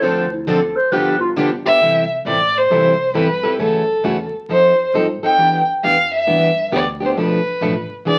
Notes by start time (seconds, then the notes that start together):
0.02 D2 D3 F3 C4 D4 A4 C5
0.32 E4
0.47 D3 F3 C4 D4 A4
0.76 C5
0.91 G1 D3 F3 B3 D4 G4 B4
1.20 F4
1.37 D3 F3 B3 D4 G4
1.66 B3 D4 G4 E5
1.81 C2 C3 E3 G3 C4 E4 A4
2.25 A1 C3 E3 G3 C4 E4 A4 D5
2.58 C5
2.70 C2 C3 E3 G3 C4 E4 A4
3.14 G2 C3 E3 G3 C4 E4 A4 B4
3.43 G3 C4 E4 A4
3.59 F#2 C#3 E3 A3 C#4 F#4 A4
4.04 E2 C#3 E3 A3 C#4 F#4
4.33 muted upright bass stroke
4.49 F2 F3 C4 D#4 A4 C5
4.94 G2 F3 C4 D#4 A4
5.22 C4 D#4 A4 G5, muted upright bass stroke
5.38 E2 E3 B3 D4 G4
5.83 F2 E3 B3 D4 G4 F5
6.15 E5
6.27 G2 E3 B3 D4 G4
6.71 D2 E3 B3 D4 G4
6.75 D5
7.00 B3 D4 G4
7.05 C5
7.17 B1 B2 F3 A3 D4 A4 B4
7.46 muted upright bass stroke
7.61 A1 B2 F3 A3 D4 A4
7.90 muted upright bass stroke
8.05 E1 E3 B3 D4 G#4 D5